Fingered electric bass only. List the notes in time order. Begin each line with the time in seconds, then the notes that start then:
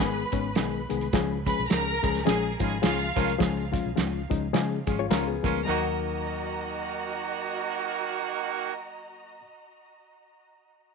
Already playing: G#1
0.33 G#1
0.57 B1
0.91 C2
1.13 C#2
1.59 B1
1.71 C#2
2.04 C#2
2.28 A#1
2.60 G#1
2.84 C#2
3.17 C2
3.41 C#2
3.86 B1
3.97 C#2
4.31 C#2
4.54 C#3
4.88 G#1
5.11 C#2
5.44 D2
5.68 D#2